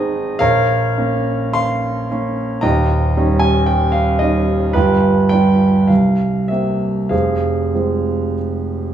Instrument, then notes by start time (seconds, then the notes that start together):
grand piano
Already playing: G#1 C4 D#4 G#4 C5 D#5 G#5
0.39 A#1 A#4 C#5 F5
0.98 A#3 C#4
1.53 F5 C6
2.11 A#3 C#4
2.61 D#1 D#2 D#5 G5 A#5
3.17 G3 C#4 D#4
3.39 G#5
3.66 G5
3.92 F5
4.19 G3 C#4 D#4 D#5
4.73 G1 G2 F4 G4 B4
5.29 G3 D4 F4 G5
5.88 C2 F5
6.48 A#3 C4 G4 E5
7.09 F1 F2 G#4 C5 F5
7.74 G#3 C4 F4